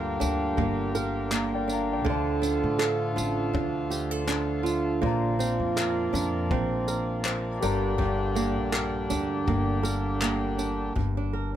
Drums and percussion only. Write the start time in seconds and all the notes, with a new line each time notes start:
0.21 tambourine
0.58 kick
0.95 tambourine
1.32 clap
1.70 tambourine
2.06 kick
2.43 tambourine
2.80 clap
3.18 tambourine
3.55 kick
3.91 tambourine
4.29 clap
4.66 tambourine
5.03 kick
5.40 tambourine
5.78 clap
6.15 tambourine
6.51 kick
6.88 tambourine
7.25 clap
7.62 tambourine
7.99 kick
8.36 tambourine
8.73 clap
9.10 tambourine
9.48 kick
9.85 tambourine
10.22 clap
10.59 tambourine
10.96 kick